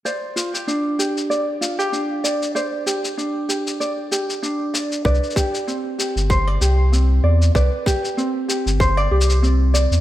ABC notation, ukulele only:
X:1
M:4/4
L:1/16
Q:"Swing 16ths" 1/4=96
K:Gmix
V:1 name="Ukulele"
[cd]2 F G D2 G2 d2 F G D2 d2 | [cd]2 G2 D2 G2 d2 G2 D2 d2 | [Bd]2 G2 C2 G2 c d G2 C2 d2 | [Bd]2 G2 C2 G2 c d G2 C2 d2 |]